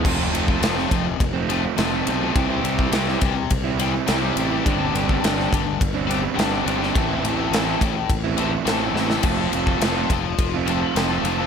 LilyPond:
<<
  \new Staff \with { instrumentName = "Overdriven electric guitar" } { \time 4/4 \key f \lydian \tempo 4 = 104 <f, c f a c' f'>8. <f a c' f'>16 <f, c f a c' f'>8 <f a c' f'>8. r16 <f a c' f'>8 <f, c f a c' f'>16 <f a c' f'>16 <f a c' f'>16 <f a c' f'>16 | <c e g c' g'>8. <g c' g'>16 <c e g c' g'>8 <e g c' g'>8. r16 <e g c' g'>8 <c e g c' g'>16 <g c' g'>16 <e g c' g'>16 <g c' g'>16 | <g, d g c' d' g'>8. <g c' d' g'>16 <g, d g c' d' g'>8 <g c' d' g'>8. r16 <g c' d' g'>8 <g, d g c' d' g'>16 <g c' d' g'>16 <g c' d' g'>16 <g c' d' g'>16 | <a, e c' e' a'>8. <c' e' a'>16 <a, e c' e' a'>8 <e c' e' a'>8. r16 <e c' e' a'>8 <a, e c' e' a'>16 <c' e' a'>16 <e c' e' a'>16 <c' e' a'>16 |
<f c' f' a'>8. <c' f' a'>16 <f c' f' a'>8 <f c' f' a'>8. r16 <f c' f' a'>8 <f c' f' a'>16 <c' f' a'>16 <f c' f' a'>16 <c' f' a'>16 | }
  \new Staff \with { instrumentName = "Overdriven electric guitar" } { \time 4/4 \key f \lydian <f, c f a c'>16 <f a c'>16 <c f a c'>8 <f, c f a c'>16 <f a c'>8. r16 <f a c'>16 <c f a c'>8 <f, c f a c'>16 <f a c'>16 <c f a c'>16 <f a c'>16 | <c g c' e'>16 <g c' e'>16 <c g c' e'>8 <c g c' e'>16 <g c' e'>8. r16 <g c' e'>16 <c g c' e'>8 <c g c' e'>16 <g c' e'>16 <c g c' e'>16 <g c' e'>16 | <g, d g c' d'>16 <g c' d'>16 <d g c' d'>8 <g, d g c' d'>16 <g c' d'>8. r16 <g c' d'>16 <d g c' d'>8 <g, d g c' d'>16 <g c' d'>16 <d g c' d'>16 <g c' d'>16 | <a, e a c' e'>16 <a c' e'>16 <e a c' e'>8 <a, e a c' e'>16 <a c' e'>8. r16 <a c' e'>16 <e a c' e'>8 <a, e a c' e'>16 <a c' e'>16 <e a c' e'>16 <a c' e'>16 |
<f a c' f'>16 <a c' f'>16 <f a c' f'>8 <f a c' f'>16 <a c' f'>8. r16 <a c' f'>16 <f a c' f'>8 <f a c' f'>16 <a c' f'>16 <f a c' f'>16 <a c' f'>16 | }
  \new Staff \with { instrumentName = "Fingered electric bass" } { \clef bass \time 4/4 \key f \lydian f,,8 f,,8 f,,8 f,,8 f,,4 f,,8 b,,8 | c,8 c,8 c,8 c,8 c,4 c,8 a,,8 | g,,8 g,,8 g,,8 g,,8 g,,4 g,,8 g,,8 | a,,8 a,,8 a,,8 a,,8 a,,4 a,,8 a,,8 |
f,,8 f,,8 f,,8 f,,8 f,,4 f,,8 f,,8 | }
  \new DrumStaff \with { instrumentName = "Drums" } \drummode { \time 4/4 <cymc bd>8 cymr16 bd16 <cymr sn>16 sn16 <bd cymr>8 <bd cymr>8 cymr8 <cymr sn>8 cymr8 | <bd cymr>8 cymr16 bd16 <cymr sn>16 sn16 <bd cymr>8 <bd cymr>8 cymr8 <cymr sn>8 cymr8 | <bd cymr>8 cymr16 bd16 <cymr sn>16 sn16 <bd cymr>8 <bd cymr>8 cymr8 <cymr sn>8 cymr16 sn16 | <bd cymr>8 cymr8 <cymr sn>8 <bd cymr>8 <bd cymr>8 cymr8 <cymr sn>8 sn16 sn16 |
<cymc bd>8 cymr16 bd16 <cymr sn>8 <bd cymr>8 <bd cymr>8 cymr8 <cymr sn>8 cymr8 | }
>>